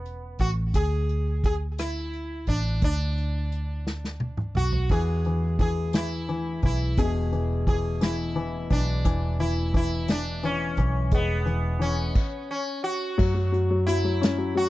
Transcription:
0.00 0.36 E1 medium
0.00 0.37 B3 medium
0.06 closed hi-hat soft
0.39 0.73 A1 medium
0.39 0.50 F#4 medium
0.39 kick medium
0.39 closed hi-hat soft
0.74 2.44 D2 loud
0.74 1.44 G#4 medium
0.74 kick medium
0.74 closed hi-hat medium
1.09 closed hi-hat soft
1.44 1.55 G#4 medium
1.44 kick medium
1.44 closed hi-hat medium
1.78 2.48 E4 medium
1.78 cross-stick medium
1.78 closed hi-hat medium
2.13 closed hi-hat soft
2.47 2.80 A1 medium
2.47 2.80 D4 medium
2.47 kick medium
2.47 closed hi-hat soft
2.82 4.51 D2 medium
2.82 4.52 D4 medium
2.82 kick medium
2.82 closed hi-hat medium
3.17 closed hi-hat soft
3.52 closed hi-hat soft
3.87 snare soft
4.04 snare soft
4.20 high tom medium
4.37 mid tom medium
4.55 4.88 B1 medium
4.55 4.88 F#4 medium
4.55 mid tom medium
4.72 floor tom medium
4.89 6.59 E2 medium
4.89 5.24 E3 medium
4.89 5.60 G#4 medium
4.89 kick medium
4.89 crash medium
5.25 5.58 E3 soft
5.25 closed hi-hat soft
5.59 5.92 E3 soft
5.59 5.92 G#4 medium
5.59 kick medium
5.59 closed hi-hat soft
5.93 6.27 E3 soft
5.93 6.60 E4 medium
5.93 snare medium
5.93 closed hi-hat medium
6.29 6.62 E3 medium
6.29 closed hi-hat soft
6.62 6.96 B1 medium
6.62 7.31 E3 soft
6.62 7.00 E4 medium
6.62 kick medium
6.62 closed hi-hat soft
6.97 8.67 E1 medium
6.97 9.01 B2 medium
6.97 7.63 G#4 medium
6.97 kick medium
6.97 closed hi-hat medium
7.32 7.66 E3 soft
7.32 closed hi-hat soft
7.67 7.99 E3 soft
7.67 8.03 G#4 medium
7.67 kick medium
7.67 closed hi-hat soft
8.01 8.34 E3 soft
8.01 8.67 E4 medium
8.01 snare medium
8.01 closed hi-hat medium
8.36 8.69 E3 medium
8.36 closed hi-hat soft
8.70 9.03 B1 medium
8.70 9.04 E3 soft
8.70 9.36 D4 medium
8.70 kick medium
8.70 closed hi-hat soft
9.05 10.74 E1 medium
9.05 9.38 E3 medium
9.05 kick loud
9.05 closed hi-hat medium
9.40 9.73 E3 soft
9.40 9.72 E4 medium
9.40 closed hi-hat soft
9.74 10.07 E3 medium
9.74 10.11 E4 medium
9.74 kick medium
9.74 closed hi-hat soft
10.08 10.42 E3 soft
10.08 10.45 D4 medium
10.08 snare medium
10.08 closed hi-hat medium
10.43 10.77 E3 medium
10.43 11.14 C#4 medium
10.43 closed hi-hat soft
10.77 11.10 B1 medium
10.77 11.44 E3 medium
10.77 kick medium
10.77 closed hi-hat soft
11.11 12.12 E1 loud
11.11 12.13 G#3 medium
11.11 12.47 B3 medium
11.11 kick loud
11.11 closed hi-hat medium
11.46 11.78 E3 soft
11.46 closed hi-hat soft
11.79 12.14 E3 soft
11.79 12.50 C#4 medium
11.79 closed hi-hat medium
12.15 kick loud
12.15 crash medium
12.51 12.83 C#4 medium
12.84 13.86 F#4 medium
13.18 14.69 F#2 loud
13.18 13.33 F#3 medium
13.18 kick loud
13.18 crash medium
13.35 13.51 F#3 medium
13.52 13.69 F#3 medium
13.52 closed hi-hat soft
13.70 13.86 F#3 medium
13.87 14.03 F#3 medium
13.87 14.57 E4 medium
13.87 closed hi-hat medium
14.04 14.36 F#3 medium
14.21 14.69 C#4 medium
14.21 snare loud
14.21 closed hi-hat loud
14.38 14.54 F#3 medium
14.55 14.69 F#3 medium
14.55 14.69 F#4 medium
14.55 closed hi-hat soft

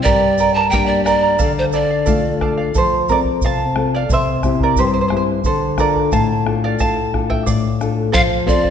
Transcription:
0.03 1.36 G2 medium
0.03 0.38 G4 medium
0.03 0.38 A#4 medium
0.03 0.56 D5 loud
0.03 0.38 D5 medium
0.03 0.38 G5 medium
0.03 0.39 A#5 medium
0.03 bombo low medium
0.03 shaker medium
0.38 0.56 A#4 medium
0.38 0.55 D5 medium
0.38 0.56 G5 medium
0.38 0.55 A#5 medium
0.38 shaker medium
0.54 0.72 A#4 soft
0.54 0.73 D5 soft
0.54 0.69 A5 loud
0.54 0.72 A#5 medium
0.70 1.37 G3 soft
0.70 1.38 A#3 soft
0.70 1.38 D4 medium
0.70 1.06 G4 medium
0.70 1.05 A#4 medium
0.70 1.05 D5 medium
0.70 0.86 G5 loud
0.70 1.04 G5 medium
0.70 1.06 A#5 medium
0.70 bombo low medium
0.70 shaker loud
0.86 1.03 D5 medium
1.05 1.22 A#4 medium
1.05 1.52 D5 medium
1.05 1.21 D5 medium
1.05 1.22 G5 medium
1.05 1.21 A#5 medium
1.05 bombo rim soft
1.05 shaker medium
1.22 1.38 A#4 soft
1.22 1.38 D5 soft
1.22 1.39 A#5 medium
1.39 2.71 D3 medium
1.39 1.72 A4 medium
1.39 1.72 D5 medium
1.39 1.73 F5 medium
1.39 bombo low medium
1.39 shaker medium
1.59 1.65 C5 medium
1.72 1.90 A4 medium
1.72 1.90 D5 medium
1.72 2.38 D5 medium
1.72 1.89 F5 medium
1.72 shaker medium
1.91 2.05 D5 soft
1.91 2.06 F5 medium
2.06 2.72 A3 medium
2.06 2.73 D4 soft
2.06 2.73 F4 medium
2.06 2.40 A4 medium
2.06 2.40 D5 medium
2.06 2.41 F5 medium
2.06 bombo low medium
2.06 shaker loud
2.41 2.58 A4 medium
2.41 2.58 D5 medium
2.41 2.56 F5 medium
2.41 bombo rim soft
2.41 bombo low soft
2.58 2.75 D5 soft
2.58 2.74 F5 medium
2.74 3.40 F3 medium
2.74 3.06 A4 medium
2.74 3.08 C5 medium
2.74 bombo low medium
2.74 shaker medium
3.09 3.63 C4 medium
3.09 3.64 F4 soft
3.09 3.63 A4 medium
3.09 3.18 A#4 medium
3.09 3.20 D5 medium
3.09 bombo low soft
3.09 shaker medium
3.25 bombo low soft
3.41 4.08 C3 medium
3.41 3.90 F5 medium
3.41 bombo low medium
3.41 shaker medium
3.46 3.96 A5 medium
3.76 4.03 C4 soft
3.76 4.03 F4 soft
3.76 4.03 A4 soft
3.76 bombo rim medium
3.95 4.09 D5 medium
3.95 4.10 F5 medium
4.09 4.75 C3 medium
4.09 4.58 C5 medium
4.09 bombo low medium
4.09 shaker medium
4.14 4.59 E5 medium
4.43 4.98 C4 soft
4.43 4.98 E4 soft
4.43 4.98 G4 medium
4.43 bombo rim medium
4.43 bombo low medium
4.43 shaker medium
4.60 4.77 A#4 medium
4.60 4.78 D5 medium
4.60 bombo low medium
4.76 5.43 G2 medium
4.76 4.85 G4 medium
4.76 4.85 C5 medium
4.76 bombo low medium
4.76 shaker medium
4.87 4.92 C5 medium
4.94 5.00 C5 medium
5.01 5.07 C5 medium
5.08 5.38 C4 soft
5.08 5.38 E4 soft
5.08 5.15 C5 medium
5.08 bombo rim medium
5.12 5.38 G4 medium
5.17 5.23 C5 medium
5.44 6.10 D3 medium
5.44 5.77 A4 medium
5.44 5.80 C5 medium
5.44 bombo low medium
5.44 shaker medium
5.78 6.32 D4 soft
5.78 6.32 F4 soft
5.78 6.32 A4 medium
5.78 6.10 A#4 medium
5.78 6.10 D5 medium
5.78 bombo rim medium
5.78 bombo low soft
5.78 shaker soft
5.95 bombo low soft
6.12 6.77 A2 medium
6.12 6.59 F5 medium
6.12 6.59 A5 medium
6.12 bombo low medium
6.12 shaker medium
6.45 6.99 D4 soft
6.45 7.00 F4 soft
6.45 7.00 A4 soft
6.45 bombo rim medium
6.64 6.79 D5 medium
6.64 6.79 F5 medium
6.79 7.45 A2 medium
6.79 7.27 F5 medium
6.79 7.30 A5 medium
6.79 bombo low medium
6.79 shaker medium
7.14 7.67 D4 soft
7.14 7.68 F4 soft
7.14 7.68 A4 medium
7.14 bombo rim soft
7.14 bombo low soft
7.30 7.46 E5 medium
7.30 7.46 G5 medium
7.30 bombo low soft
7.46 8.12 A2 medium
7.46 7.94 D5 medium
7.46 7.93 F5 medium
7.46 bombo low medium
7.46 shaker loud
7.81 8.08 D4 soft
7.81 8.08 F4 soft
7.81 8.08 A4 medium
7.81 bombo rim soft
7.81 shaker medium
8.12 8.70 F3 medium
8.12 8.45 A4 medium
8.12 8.46 C5 medium
8.12 8.47 F5 medium
8.12 8.21 F5 loud
8.12 bombo low medium
8.12 shaker medium
8.46 8.70 C4 medium
8.46 8.70 F4 medium
8.46 8.64 A4 medium
8.46 8.70 A4 medium
8.46 8.62 C5 medium
8.46 8.70 D5 medium
8.46 8.62 F5 medium
8.46 bombo low medium
8.46 shaker medium
8.63 8.70 C5 soft
8.63 8.70 F5 medium
8.63 bombo low medium

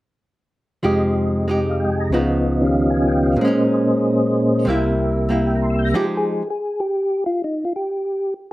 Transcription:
0.83 2.11 F2 soft
0.83 2.12 C3 soft
0.83 2.11 F3 soft
0.83 1.47 G#3 soft
0.83 2.12 G#3 soft
0.83 1.48 D#4 soft
0.83 1.50 G4 soft
0.83 2.12 G4 soft
0.83 2.12 D#5 soft
1.48 2.11 G#3 soft
1.48 2.12 D#4 soft
1.48 2.13 G4 soft
1.70 1.85 F5 soft
1.80 1.98 G5 soft
1.90 2.06 G#5 soft
2.00 2.16 A#5 soft
2.10 3.38 C#2 soft
2.10 3.39 C#3 soft
2.10 3.40 F3 soft
2.10 3.39 B3 soft
2.10 3.40 F4 soft
2.14 3.40 B3 soft
2.14 3.40 D#4 soft
2.14 3.38 D#5 medium
2.61 3.38 D#3 soft
2.61 3.37 C#4 soft
2.61 3.39 G4 soft
2.61 3.21 F5 soft
2.90 3.13 G#5 soft
3.07 3.31 G5 soft
3.23 3.45 F5 soft
3.37 4.65 A#2 soft
3.37 4.66 A#2 soft
3.37 4.66 A#3 soft
3.37 4.66 C#4 soft
3.37 4.66 G#4 soft
3.37 4.66 C5 soft
3.37 4.67 D#5 medium
3.41 4.66 G#3 soft
3.41 4.68 C#4 soft
3.48 4.70 D#4 medium
4.65 5.94 C2 soft
4.65 5.93 C3 soft
4.65 5.94 C3 soft
4.65 5.28 G3 soft
4.65 5.94 A#3 soft
4.65 5.29 A#3 soft
4.65 5.94 G4 soft
4.65 5.95 E5 soft
4.70 5.30 E4 medium
5.29 5.93 G3 soft
5.29 5.94 A#3 soft
5.29 5.95 E4 soft
5.47 5.57 G5 soft
5.55 5.66 A#5 soft
5.62 5.76 C6 soft
5.70 5.83 E6 soft
5.79 5.89 G6 soft
5.85 5.96 A#6 medium
5.94 6.41 F3 soft
5.94 6.42 G#3 soft
5.94 6.42 D#4 medium
5.94 6.42 G4 medium
5.94 6.05 G4 medium
6.17 6.48 G#4 medium
6.50 6.80 G#4 medium
6.80 7.24 G4 medium
7.26 7.42 F4 medium
7.44 7.64 D#4 medium
7.65 7.73 F4 medium
7.76 8.34 G4 medium

